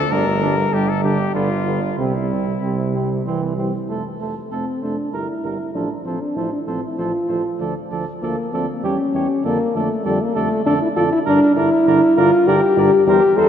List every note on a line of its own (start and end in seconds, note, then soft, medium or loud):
0.00 0.13 A4 loud
0.11 0.65 G1 loud
0.11 0.25 D3 medium
0.11 0.25 G3 medium
0.11 0.25 D4 medium
0.11 0.75 A#4 loud
0.41 0.55 D3 medium
0.41 0.56 G3 medium
0.41 0.56 D4 medium
0.72 1.27 G1 loud
0.72 0.86 D3 medium
0.72 0.87 G3 medium
0.72 0.87 D4 medium
0.72 0.91 G4 loud
0.89 1.03 A4 loud
1.03 1.17 D3 medium
1.03 1.17 G3 medium
1.03 1.17 D4 medium
1.03 1.34 G4 loud
1.34 1.90 G1 medium
1.34 1.48 D3 medium
1.34 1.48 G3 medium
1.34 1.49 B3 medium
1.34 1.97 F4 loud
1.65 1.80 D3 medium
1.65 1.80 G3 medium
1.65 1.81 B3 medium
1.98 2.55 C2 medium
1.98 2.12 C3 medium
1.98 2.12 G3 medium
1.98 2.13 C4 medium
1.98 3.24 E4 medium
2.30 2.45 C3 medium
2.30 2.44 G3 medium
2.30 2.45 C4 medium
2.62 3.18 C2 medium
2.62 3.22 C3 medium
2.62 2.77 G3 medium
2.62 2.77 C4 medium
2.94 3.08 G3 soft
2.94 3.09 C4 medium
3.25 3.72 C2 medium
3.25 3.56 E3 medium
3.25 3.40 G3 medium
3.25 3.41 C4 medium
3.57 3.71 E3 medium
3.57 3.72 G3 medium
3.57 3.72 C4 soft
3.89 4.03 F1 medium
3.89 4.03 A3 soft
3.89 4.04 A4 soft
3.89 4.04 C5 soft
4.20 4.34 F1 soft
4.20 4.34 A3 soft
4.20 4.35 A4 soft
4.20 4.35 C5 soft
4.51 4.65 F1 soft
4.51 4.65 A3 soft
4.51 4.84 C4 medium
4.51 4.66 A4 soft
4.51 4.65 C5 soft
4.82 4.96 F1 soft
4.82 4.96 A3 soft
4.82 5.12 D4 medium
4.82 4.96 A4 soft
4.82 4.96 C5 soft
5.13 5.27 G1 soft
5.13 5.27 G3 soft
5.13 5.74 E4 medium
5.13 5.27 A#4 soft
5.43 5.57 G1 medium
5.43 5.58 G3 soft
5.43 5.58 A#4 soft
5.74 5.88 A1 medium
5.74 5.89 F3 soft
5.74 5.88 D4 medium
5.74 5.89 A4 soft
5.74 5.89 C5 soft
6.04 6.19 A1 soft
6.04 6.19 F3 soft
6.04 6.22 C4 medium
6.04 6.20 A4 soft
6.04 6.20 C5 soft
6.21 6.38 D4 medium
6.36 6.50 A1 medium
6.36 6.51 F3 soft
6.36 6.52 E4 medium
6.36 6.51 A4 soft
6.36 6.50 C5 soft
6.52 6.59 D4 medium
6.67 6.81 A1 medium
6.67 6.81 F3 soft
6.67 6.83 C4 medium
6.67 6.81 A4 soft
6.67 6.81 C5 soft
6.83 7.00 E4 medium
6.98 7.12 A1 medium
6.98 7.12 F3 soft
6.98 7.60 F4 medium
6.98 7.13 A4 medium
6.98 7.12 C5 soft
7.29 7.43 A1 medium
7.29 7.43 F3 soft
7.29 7.44 A4 soft
7.29 7.43 C5 soft
7.60 7.74 D2 medium
7.60 7.74 F3 medium
7.60 7.74 A4 medium
7.60 7.74 D5 soft
7.91 8.05 D2 medium
7.91 8.05 F3 medium
7.91 8.06 A4 medium
7.91 8.05 D5 medium
8.22 8.36 D2 medium
8.22 8.36 F3 soft
8.22 8.55 A#3 medium
8.22 8.36 A4 medium
8.22 8.36 D5 medium
8.53 8.67 D2 medium
8.53 8.67 F3 medium
8.53 8.69 C4 medium
8.53 8.67 A4 medium
8.53 8.67 D5 medium
8.69 8.85 A#3 medium
8.83 8.97 E2 medium
8.83 8.97 G3 medium
8.83 9.44 C#4 medium
8.83 8.98 G4 medium
8.83 8.98 C#5 medium
9.13 9.28 E2 medium
9.13 9.27 G3 medium
9.13 9.28 G4 medium
9.13 9.28 C#5 medium
9.44 9.58 F2 medium
9.44 9.58 D3 medium
9.44 9.77 A#3 loud
9.44 9.58 A4 medium
9.44 9.58 D5 medium
9.74 9.89 F2 medium
9.74 9.88 D3 medium
9.74 10.07 A3 medium
9.74 9.89 A4 medium
9.74 9.89 D5 medium
10.05 10.19 F2 medium
10.05 10.19 D3 medium
10.05 10.23 G3 medium
10.05 10.19 A4 medium
10.05 10.19 D5 medium
10.21 10.37 A#3 medium
10.35 10.49 F2 medium
10.35 10.49 D3 medium
10.35 10.65 A3 medium
10.35 10.49 A4 medium
10.35 10.49 D5 medium
10.66 10.80 F2 medium
10.66 10.79 D3 medium
10.66 10.73 D4 loud
10.66 10.79 A4 medium
10.66 10.80 D5 medium
10.81 10.88 E4 medium
10.96 11.10 F2 medium
10.96 11.10 D3 medium
10.96 11.03 F4 loud
10.96 11.09 A4 medium
10.96 11.10 D5 medium
11.12 11.19 E4 loud
11.26 11.40 G2 medium
11.26 11.40 D3 medium
11.26 11.56 D4 loud
11.26 11.40 A#4 medium
11.26 11.41 D5 medium
11.56 11.70 G2 medium
11.56 11.70 D3 medium
11.56 12.18 E4 loud
11.56 11.70 A#4 medium
11.56 11.71 D5 medium
11.87 12.00 G2 medium
11.87 12.00 D3 medium
11.87 12.00 A#4 medium
11.87 12.01 D5 medium
12.17 12.31 G2 medium
12.17 12.31 D3 medium
12.17 12.49 F4 loud
12.17 12.31 A#4 medium
12.17 12.32 D5 medium
12.47 12.61 G2 medium
12.47 12.61 D3 medium
12.47 13.07 G4 loud
12.47 12.61 A#4 medium
12.47 12.61 D5 medium
12.77 12.91 G2 loud
12.77 12.91 D3 medium
12.77 12.92 A#4 medium
12.77 12.92 D5 medium
13.07 13.20 E2 loud
13.07 13.21 G3 medium
13.07 13.38 G4 loud
13.07 13.22 A#4 medium
13.07 13.22 C5 medium
13.37 13.49 E2 medium
13.37 13.49 G3 medium
13.37 13.49 A4 loud
13.37 13.49 A#4 medium
13.37 13.49 C5 medium